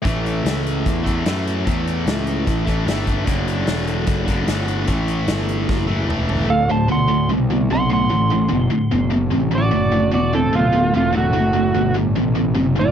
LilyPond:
<<
  \new Staff \with { instrumentName = "Electric slide guitar" } { \time 4/4 \key a \mixolydian \tempo 4 = 148 r1 | r1 | r1 | r1 |
\key d \mixolydian f''8 a''8 c'''4 r4 c'''8 c'''8~ | c'''2~ c'''8 r4 d''8~ | d''4 d''8 a'8 f'4 f'8 fis'8~ | fis'4. r2 d''8 | }
  \new Staff \with { instrumentName = "Lead electric guitar" } { \time 4/4 \key a \mixolydian r1 | r1 | r1 | r1 |
\key d \mixolydian a'8 c''8 fis''4 r4 fis''8 fis''8~ | fis''2~ fis''8 r4 fis'8~ | fis'4 fis'8 c'8 a4 a8 a8~ | a4. r2 f'8 | }
  \new Staff \with { instrumentName = "Distorted electric guitar" } { \clef bass \time 4/4 \key a \mixolydian <a, e a>2~ <a, e a>8 <a, e a>8 <a, e a>4 | <a, e a>2~ <a, e a>8 <a, e a>8 <a, e a>4 | <d, a, d>2~ <d, a, d>8 <d, a, d>8 <d, a, d>4 | <a, e a>2~ <a, e a>8 <a, e a>8 <a, e a>4 |
\key d \mixolydian <d, a,>8 <d, a,>8 <d, b,>8 <d, a,>8 <d, b,>8 <d, b,>8 <d, c>8 <d, a,>8 | <d, a,>8 <d, a,>8 <d, b,>8 <d, a,>8 <d, b,>8 <d, b,>8 <d, c>8 <d, a,>8 | <d, a,>8 <d, a,>8 <d, b,>8 <d, a,>8 <d, b,>8 <d, b,>8 <d, c>8 <d, a,>8 | <d, a,>8 <d, a,>8 <d, b,>8 <d, a,>8 <d, b,>8 <d, b,>8 <d, c>8 <d, a,>8 | }
  \new Staff \with { instrumentName = "Picked electric bass" } { \clef bass \time 4/4 \key a \mixolydian a,,4 cis,4 e,4 fis,4 | e,4 cis,4 a,,4 g,,4 | fis,,4 e,,4 fis,,4 g,,4 | a,,4 g,,4 fis,,4 e,,4 |
\key d \mixolydian d,,4 d,4 c,4 b,,4 | a,,4 fis,,8 r8 fis,,4 a,,4 | fis,,4 e,,4 d,,4 e,,4 | fis,,4 g,,4 a,,4 fis,,4 | }
  \new DrumStaff \with { instrumentName = "Drums" } \drummode { \time 4/4 <hh bd>8 hh8 <hh sn>8 hh8 <hh bd>8 <hh bd>8 <hh sn>8 hh8 | <hh bd>8 hh8 <hh sn>8 hh8 <hh bd>8 <hh bd>8 <hh sn>8 <hh bd>8 | <hh bd>8 hh8 <hh sn>8 hh8 <hh bd>8 <hh bd>8 <hh sn>8 hh8 | <hh bd>8 hh8 <hh sn>8 hh8 <bd sn>8 tommh8 toml8 tomfh8 |
r4 r4 r4 r4 | r4 r4 r4 r4 | r4 r4 r4 r4 | r4 r4 r4 r4 | }
>>